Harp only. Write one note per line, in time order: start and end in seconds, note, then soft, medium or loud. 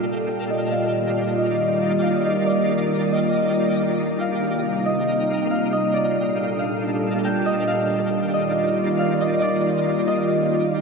0.00 0.56 D5 medium
0.00 0.71 F5 medium
0.29 1.84 G5 medium
0.50 1.38 D#5 medium
0.72 2.03 F5 medium
1.38 2.25 D#5 medium
2.03 3.69 F5 medium
2.25 2.52 D#5 medium
2.46 3.18 D5 loud
3.12 4.85 D#5 medium
4.21 5.50 F5 medium
4.86 5.72 D#5 medium
5.51 6.59 F5 medium
5.73 6.00 D#5 medium
5.94 7.52 D5 loud
6.59 7.67 F5 medium
7.25 8.80 G5 medium
7.46 8.33 D#5 medium
7.68 8.98 F5 loud
8.34 9.21 D#5 medium
8.99 10.65 F5 medium
9.21 9.48 D#5 medium
9.42 10.14 D5 loud
10.08 10.81 D#5 medium